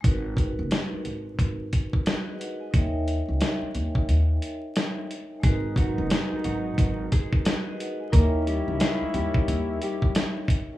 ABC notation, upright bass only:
X:1
M:4/4
L:1/16
Q:"Swing 16ths" 1/4=89
K:G#m
V:1 name="Upright bass" clef=bass
G,,,3 F,,, z2 G,,,2 G,,,2 z6 | D,,3 C,, z2 D,,2 D,,2 z6 | G,,,3 F,,, z2 G,,,2 G,,,2 z6 | D,,3 C,, z2 D,,2 D,,2 z6 |]